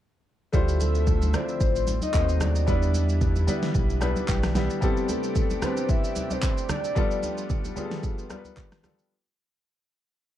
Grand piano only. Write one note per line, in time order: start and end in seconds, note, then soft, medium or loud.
0.52 1.18 A3 loud
0.52 1.19 D4 medium
0.52 1.19 E4 medium
0.52 1.19 F4 medium
0.52 1.20 C5 loud
1.33 2.12 A3 medium
1.33 2.14 D4 medium
1.33 2.14 E4 medium
1.33 2.15 F4 medium
1.33 2.15 D5 medium
2.13 2.58 A3 medium
2.13 2.58 C4 medium
2.13 2.58 D#4 medium
2.13 2.59 F#4 medium
2.13 2.22 B4 medium
2.22 2.62 C5 medium
2.67 3.33 G3 medium
2.67 3.33 B3 medium
2.67 3.33 D4 medium
2.67 3.33 E4 medium
2.67 3.34 B4 loud
3.47 3.92 G3 medium
3.47 3.92 B3 medium
3.47 3.92 D4 medium
3.47 3.92 E4 medium
3.47 3.93 B4 loud
4.01 4.45 G3 medium
4.01 4.45 B3 medium
4.01 4.46 D4 medium
4.01 4.46 E4 medium
4.01 4.46 B4 loud
4.01 4.27 A5 medium
4.29 4.54 G5 medium
4.54 4.77 G3 medium
4.54 4.77 B3 medium
4.54 4.77 D4 medium
4.54 4.78 E4 medium
4.54 4.78 G4 medium
4.54 4.80 E5 medium
4.81 5.47 G3 loud
4.81 5.47 B3 medium
4.81 5.47 C4 medium
4.81 5.48 E4 medium
4.81 5.48 A4 loud
5.62 6.48 G3 medium
5.62 6.48 B3 medium
5.62 6.49 C4 medium
5.62 6.49 E4 medium
5.62 6.49 B4 medium
6.95 7.61 G3 loud
6.95 7.61 B3 medium
6.95 7.62 D4 medium
6.95 7.62 F4 medium
6.95 7.62 A4 loud
7.76 8.20 G3 medium
7.76 8.21 B3 medium
7.76 8.21 D4 medium
7.76 8.21 F4 medium
7.76 7.85 G#4 medium
7.85 8.25 A4 loud
8.30 8.74 G3 medium
8.30 8.74 B3 medium
8.30 8.74 D4 medium
8.30 8.75 F4 medium
8.30 8.38 A#4 medium
8.38 8.78 B4 medium
8.83 9.05 G3 medium
8.83 9.06 B3 medium
8.83 9.06 D4 medium
8.83 9.06 F4 medium
8.83 9.07 A4 medium